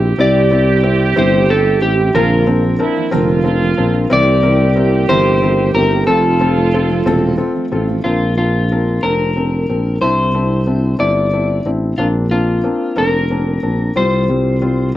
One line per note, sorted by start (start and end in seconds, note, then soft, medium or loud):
0.00 0.16 A#1 medium
0.00 0.12 C4 medium
0.00 0.19 C4 soft
0.00 0.12 E4 medium
0.00 0.19 E4 soft
0.00 0.12 G4 medium
0.00 2.14 G4 loud
0.00 0.18 G4 medium
0.18 1.12 C2 loud
0.18 0.51 C3 medium
0.18 0.50 G3 medium
0.18 0.44 C4 medium
0.18 0.50 C4 medium
0.18 0.44 E4 medium
0.18 0.51 E4 medium
0.18 0.45 G4 medium
0.18 0.52 G4 medium
0.18 1.18 D5 medium
0.51 0.67 G3 medium
0.51 0.77 C4 medium
0.51 0.68 C4 medium
0.51 0.77 E4 medium
0.51 0.68 E4 medium
0.51 0.77 G4 medium
0.51 0.67 G4 medium
0.68 1.01 C4 soft
0.68 1.00 E4 medium
0.68 0.98 G4 medium
0.83 1.09 C4 medium
0.83 1.09 E4 medium
0.83 1.09 G4 medium
0.99 1.16 C4 soft
0.99 1.16 E4 medium
0.99 1.16 G4 medium
1.16 1.83 G1 medium
1.16 1.49 C3 medium
1.16 1.47 G3 medium
1.16 1.42 C4 medium
1.16 1.48 C4 medium
1.16 1.42 E4 medium
1.16 1.49 E4 medium
1.16 1.43 G4 loud
1.16 1.49 G4 medium
1.16 1.51 C5 medium
1.48 1.65 G3 medium
1.48 1.65 C4 medium
1.48 1.75 C4 medium
1.48 1.75 E4 medium
1.48 1.65 E4 medium
1.48 1.75 G4 medium
1.48 1.64 G4 medium
1.48 1.82 A4 medium
1.65 1.99 C4 soft
1.65 1.98 E4 soft
1.65 1.97 G4 soft
1.82 2.12 A1 medium
1.82 2.08 C4 medium
1.82 2.08 E4 medium
1.82 2.08 G4 medium
1.82 2.16 G4 medium
1.99 2.14 C4 soft
1.99 2.15 E4 soft
2.14 2.82 A#1 loud
2.14 2.47 A#2 medium
2.14 2.47 D3 medium
2.14 2.45 F3 medium
2.14 2.46 A#3 medium
2.14 2.40 C4 medium
2.14 2.47 C4 medium
2.14 2.40 D4 medium
2.14 2.50 F4 medium
2.14 2.48 F4 medium
2.14 2.84 A#4 medium
2.14 2.41 A#4 medium
2.47 2.63 F3 medium
2.47 2.64 A#3 medium
2.47 2.73 C4 medium
2.47 2.63 C4 medium
2.47 2.73 D4 medium
2.47 2.62 F4 medium
2.47 2.73 A#4 medium
2.63 2.97 F3 soft
2.63 2.96 A#3 soft
2.63 2.96 C4 medium
2.63 2.95 F4 medium
2.79 3.05 C4 medium
2.79 3.06 D4 medium
2.79 3.10 E4 medium
2.79 3.06 A#4 medium
2.96 3.12 F3 medium
2.96 3.13 A#3 medium
2.96 3.13 C4 medium
2.96 3.12 F4 medium
3.11 3.74 F1 medium
3.11 3.45 A#2 medium
3.11 3.46 D3 loud
3.11 3.44 F3 medium
3.11 3.45 A#3 loud
3.11 3.38 C4 medium
3.11 3.45 C4 loud
3.11 3.38 D4 medium
3.11 4.07 F4 medium
3.11 3.46 F4 loud
3.11 3.38 A#4 loud
3.44 3.61 F3 medium
3.44 3.62 A#3 medium
3.44 3.70 C4 medium
3.44 3.61 C4 medium
3.44 3.71 D4 medium
3.44 3.60 F4 medium
3.44 3.71 A#4 medium
3.61 3.95 F3 soft
3.61 3.94 A#3 soft
3.61 3.93 C4 medium
3.61 3.92 F4 soft
3.77 4.09 A#1 medium
3.77 4.04 C4 medium
3.77 4.04 D4 medium
3.77 4.04 A#4 medium
3.94 4.11 F3 soft
3.94 4.10 A#3 soft
3.94 4.11 C4 soft
3.94 4.10 F4 medium
4.10 5.05 C2 loud
4.10 4.43 C3 medium
4.10 4.42 E3 medium
4.10 4.43 A#3 medium
4.10 4.36 C4 medium
4.10 4.44 C4 medium
4.10 4.36 E4 medium
4.10 4.44 G4 medium
4.10 5.99 G4 medium
4.10 4.37 A#4 medium
4.10 5.09 D5 medium
4.43 4.60 E3 medium
4.43 4.60 A#3 medium
4.43 4.69 C4 medium
4.43 4.59 C4 medium
4.43 4.69 E4 medium
4.43 4.69 A#4 medium
4.61 4.93 A#3 soft
4.61 4.92 C4 medium
4.76 5.02 C4 medium
4.76 5.02 E4 medium
4.76 5.02 A#4 medium
4.92 5.08 A#3 soft
4.92 5.09 C4 medium
4.92 5.09 G4 medium
5.08 5.70 G1 medium
5.08 5.41 C3 medium
5.08 5.40 E3 medium
5.08 5.41 A#3 medium
5.08 5.35 C4 medium
5.08 5.41 C4 medium
5.08 5.35 E4 medium
5.08 5.42 G4 medium
5.08 5.35 A#4 loud
5.08 5.70 C5 medium
5.41 5.58 E3 medium
5.41 5.58 A#3 medium
5.41 5.68 C4 medium
5.41 5.68 E4 medium
5.41 5.68 A#4 medium
5.58 5.92 A#3 soft
5.58 5.91 C4 soft
5.58 5.90 G4 medium
5.74 6.05 G1 medium
5.74 6.01 C4 medium
5.74 6.01 E4 medium
5.74 6.06 A#4 medium
5.74 6.01 A#4 medium
5.91 6.08 A#3 soft
5.91 6.07 C4 medium
5.91 6.07 G4 medium
6.00 6.07 G4 medium
6.07 7.02 F1 medium
6.07 6.40 F2 medium
6.07 6.40 C3 medium
6.07 6.39 F3 medium
6.07 6.40 A3 medium
6.07 6.33 C4 medium
6.07 6.41 C4 medium
6.07 6.33 F4 medium
6.07 6.41 F4 medium
6.07 7.45 F4 medium
6.07 7.34 A4 medium
6.07 6.33 A4 medium
6.40 6.56 F3 medium
6.40 6.57 A3 medium
6.40 6.66 C4 medium
6.40 6.66 F4 medium
6.40 6.67 A4 medium
6.56 6.90 F3 soft
6.56 6.90 A3 soft
6.56 6.89 C4 medium
6.56 6.88 F4 medium
6.74 6.99 C4 medium
6.74 6.99 F4 medium
6.74 7.00 A4 medium
6.89 7.06 F3 soft
6.89 7.06 A3 medium
6.89 7.06 C4 medium
6.89 7.06 F4 medium
7.06 7.42 E1 medium
7.06 7.39 C3 medium
7.06 7.37 F3 loud
7.06 7.37 A3 loud
7.06 7.32 C4 medium
7.06 7.38 C4 loud
7.06 7.32 F4 medium
7.06 7.39 F4 loud
7.06 7.32 A4 loud
7.38 7.54 F3 medium
7.38 7.55 A3 medium
7.38 7.64 C4 medium
7.38 7.55 C4 medium
7.38 7.64 F4 medium
7.38 7.54 F4 medium
7.38 7.64 A4 medium
7.55 7.89 F3 soft
7.55 7.88 A3 soft
7.55 7.87 C4 soft
7.55 7.86 F4 soft
7.71 8.02 A1 medium
7.71 7.97 C4 medium
7.71 7.86 F4 medium
7.71 7.98 F4 medium
7.71 7.98 A4 medium
7.88 8.05 F3 soft
7.88 8.05 A3 medium
7.88 8.05 C4 medium
7.88 8.04 F4 medium
8.04 8.99 A#1 medium
8.04 8.30 C4 medium
8.04 8.31 D4 medium
8.04 8.36 F4 medium
8.04 8.31 A#4 medium
8.37 8.63 C4 medium
8.37 8.64 D4 medium
8.37 9.05 F4 medium
8.37 8.64 A#4 medium
8.72 8.97 C4 medium
8.72 8.97 D4 medium
8.72 8.97 A#4 medium
9.03 9.65 F1 medium
9.03 9.29 C4 medium
9.03 9.29 D4 medium
9.03 10.01 A#4 medium
9.03 9.29 A#4 medium
9.36 9.62 C4 medium
9.36 9.62 D4 medium
9.36 9.63 A#4 medium
9.69 10.00 A#1 medium
9.69 9.95 C4 medium
9.69 9.95 D4 soft
9.69 9.95 A#4 medium
10.01 10.96 C2 medium
10.01 10.27 C4 medium
10.01 10.28 D4 medium
10.01 10.28 E4 medium
10.01 10.96 C5 medium
10.34 10.60 C4 medium
10.34 10.60 D4 medium
10.34 10.61 E4 medium
10.67 10.93 C4 medium
10.67 10.93 D4 medium
10.67 10.93 E4 medium
10.99 11.62 G1 medium
10.99 11.25 C4 medium
10.99 11.26 D4 medium
10.99 11.26 E4 medium
10.99 11.70 D5 medium
11.33 11.59 C4 medium
11.33 11.59 D4 medium
11.33 11.60 E4 medium
11.65 11.96 A1 medium
11.65 11.92 C4 medium
11.65 11.92 D4 soft
11.65 11.92 E4 medium
11.98 12.67 A#1 medium
11.98 12.25 A#3 medium
11.98 12.25 C4 medium
11.98 12.25 D4 medium
11.98 12.07 F4 medium
12.31 12.58 A#3 medium
12.31 12.58 C4 medium
12.31 12.58 D4 medium
12.31 12.99 F4 medium
12.64 12.90 A#3 medium
12.64 12.90 C4 medium
12.64 12.91 D4 medium
12.96 13.59 F1 medium
12.96 13.23 A#3 medium
12.96 13.23 C4 medium
12.96 13.23 D4 medium
12.96 13.97 A#4 medium
13.30 13.57 A#3 medium
13.30 13.57 C4 medium
13.30 13.57 D4 medium
13.62 13.94 A#1 medium
13.62 13.89 A#3 medium
13.62 13.89 C4 soft
13.62 13.89 D4 medium
13.95 14.91 C2 medium
13.95 14.22 G3 medium
13.95 14.22 C4 medium
13.95 14.23 F4 medium
13.95 14.96 C5 medium
14.29 14.55 G3 medium
14.29 14.56 C4 medium
14.29 14.56 F4 medium
14.61 14.88 G3 medium
14.61 14.88 C4 medium
14.61 14.88 F4 medium